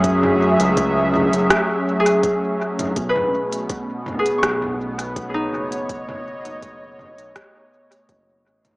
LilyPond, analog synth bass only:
\new Staff \with { instrumentName = "Analog synth bass" } { \clef bass \time 4/4 \key b \mixolydian \tempo 4 = 82 fis,8. cis,4 fis,,16 r2 | b,,16 r4. r16 b,,4. fis,,8~ | fis,,8. fis,,4 b,,16 r4 fis,,8 a,,8 | }